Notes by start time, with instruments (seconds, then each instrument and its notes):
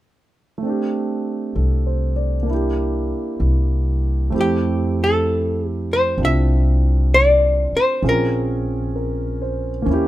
0.58 grand piano A3
0.63 grand piano C4 D4
0.69 grand piano G4
1.55 upright bass C2, grand piano A4
1.86 grand piano C5
2.16 grand piano D5
2.43 grand piano A#3 D4
2.50 grand piano E4 G4
3.40 upright bass C2
4.30 upright bass F2, grand piano A3 C4 E4
4.35 grand piano G4
4.41 hollow-body jazz guitar G4
5.04 hollow-body jazz guitar A4
5.69 hollow-body jazz guitar G4
5.93 hollow-body jazz guitar C5
6.18 upright bass C2, grand piano C4 D4 F4
6.25 hollow-body jazz guitar E5
7.14 hollow-body jazz guitar D5
7.72 muted upright bass stroke
7.77 hollow-body jazz guitar C5
8.02 upright bass A#1, grand piano C4 C#4 F4 G#4
8.09 hollow-body jazz guitar A#4
8.96 grand piano A#4
9.42 grand piano C5
9.82 grand piano A#3 C#4
9.86 upright bass D#2, grand piano E4
9.93 grand piano G4